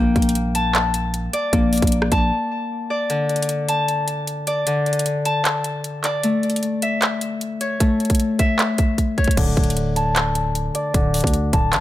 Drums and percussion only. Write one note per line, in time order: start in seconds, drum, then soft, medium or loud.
0.16 kick medium
0.16 closed hi-hat medium
0.22 closed hi-hat medium
0.29 closed hi-hat medium
0.35 closed hi-hat medium
0.55 closed hi-hat medium
0.75 clap loud
0.75 closed hi-hat medium
0.94 closed hi-hat medium
1.14 closed hi-hat medium
1.33 closed hi-hat medium
1.53 kick loud
1.53 closed hi-hat loud
1.73 closed hi-hat medium
1.73 open hi-hat medium
1.77 closed hi-hat medium
1.82 kick loud
1.82 closed hi-hat medium
1.87 closed hi-hat medium
1.92 closed hi-hat medium
2.02 cross-stick loud
2.12 kick loud
2.12 closed hi-hat medium
3.10 closed hi-hat medium
3.29 closed hi-hat soft
3.36 closed hi-hat medium
3.42 closed hi-hat medium
3.49 closed hi-hat medium
3.69 closed hi-hat medium
3.88 closed hi-hat medium
4.08 closed hi-hat medium
4.27 closed hi-hat medium
4.47 closed hi-hat medium
4.67 closed hi-hat medium
4.86 closed hi-hat soft
4.93 closed hi-hat medium
4.99 closed hi-hat medium
5.06 closed hi-hat medium
5.25 closed hi-hat medium
5.45 clap loud
5.45 closed hi-hat medium
5.64 closed hi-hat medium
5.84 closed hi-hat medium
6.04 clap medium
6.04 closed hi-hat medium
6.23 closed hi-hat medium
6.43 closed hi-hat soft
6.50 closed hi-hat medium
6.56 closed hi-hat medium
6.63 closed hi-hat medium
6.82 closed hi-hat medium
7.02 clap loud
7.02 closed hi-hat medium
7.21 closed hi-hat medium
7.41 closed hi-hat medium
7.61 closed hi-hat medium
7.80 kick loud
7.80 closed hi-hat medium
8.00 closed hi-hat medium
8.05 closed hi-hat medium
8.10 kick medium
8.10 closed hi-hat medium
8.15 closed hi-hat medium
8.20 closed hi-hat medium
8.39 kick medium
8.39 closed hi-hat medium
8.59 clap loud
8.59 closed hi-hat medium
8.78 kick loud
8.78 closed hi-hat medium
8.98 kick medium
8.98 closed hi-hat medium
9.18 kick medium
9.18 closed hi-hat soft
9.24 kick medium
9.24 closed hi-hat medium
9.31 closed hi-hat medium
9.37 kick loud
9.37 closed hi-hat medium
9.37 crash loud
9.57 kick medium
9.57 closed hi-hat soft
9.64 closed hi-hat medium
9.70 closed hi-hat medium
9.77 closed hi-hat medium
9.96 closed hi-hat medium
10.16 clap loud
10.16 closed hi-hat medium
10.35 closed hi-hat medium
10.55 closed hi-hat medium
10.75 closed hi-hat medium
10.94 kick loud
10.94 closed hi-hat medium
11.14 closed hi-hat medium
11.14 open hi-hat medium
11.21 kick medium
11.21 closed hi-hat medium
11.27 closed hi-hat medium
11.34 closed hi-hat medium
11.53 kick loud
11.53 closed hi-hat medium
11.73 clap loud
11.73 closed hi-hat medium